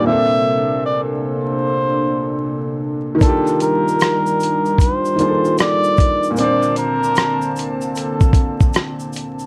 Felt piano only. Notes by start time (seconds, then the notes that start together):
0.00 A#2 A#3
0.06 C4 D4
0.12 A4
3.15 D#3 A#3
3.21 D4 F4
3.28 G4
5.16 D#3 A#3 D4
5.21 F4 G#4
5.29 A4
6.31 A#2 A#3
6.37 C4 D4
6.44 C5